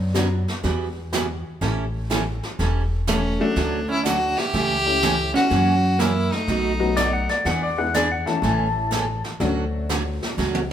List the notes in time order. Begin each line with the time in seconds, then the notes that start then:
Already playing: F#2 F#3 B3 C#4 D4 F#4
0.14 D3 F#3 B3 C#4 D4 F#4, snare, hi-hat pedal
0.48 snare
0.63 E2 E3 G3 B3 F#4, brush sweep, snare
1.13 E3 G3 B3 F#4, snare, hi-hat pedal
1.61 A1 E3 G3 C#4 E4 A4, brush sweep, snare
2.10 E3 G3 C#4 E4 A4, snare, hi-hat pedal
2.43 snare
2.59 E1 E3 G3 C#4 E4 A4, brush sweep, snare
3.07 E3 G3 A3 C#4 E4 A4, snare, hi-hat pedal
3.40 F#3 A3 C#4 D4 F#4
3.56 D2 D3 F#3 A3 C#4 F#4, brush sweep, snare
3.89 C#4 E4
4.04 D3 F#3 A3 C#4 D4 F#4, snare, hi-hat pedal
4.37 E4 G4, snare
4.53 C#2 C#3 E3 A3 C#4 G4, brush sweep, snare
4.86 G3 A3 C#4 E4 G4
5.02 C#3 E3 A3 C#4 G4, snare, hi-hat pedal
5.34 C#4 F#4, snare
5.50 F#2 C#3 E3 A#3 C#4 F#4, brush sweep, snare
5.99 C#3 E3 A#3 C#4 E4 F#4, snare, hi-hat pedal
6.32 A3 D#4, snare
6.48 B1 B2 F#3 A3 D#4 F#4, brush sweep, snare
6.80 F#3 A3 B3 D#4 F#4
6.96 B2 F#3 A3 D#4 F#4 D5, snare, hi-hat pedal
7.13 F#5
7.29 D5, snare
7.45 E2 E3 B3 D4 G#4 F#5, brush sweep, snare
7.63 D5
7.77 G#3 B3 D4 E4 G#4 F#5
7.94 E3 B3 D4 G#4 D5, snare, hi-hat pedal
8.12 F#5
8.26 E3 A3 C#4 E4 A4 A5, snare
8.42 A1 C#3 E3 A3 C#4 A4, brush sweep, snare
8.91 C#3 E3 A3 C#4 A4, snare, hi-hat pedal
9.24 snare
9.40 D2 D3 F#3 A3 C#4 D4 F#4, brush sweep, snare
9.89 D3 F#3 A3 C#4 F#4, snare, hi-hat pedal
10.22 snare
10.38 C#2 D3 F#3 A3 C#4 F#4, snare
10.55 high tom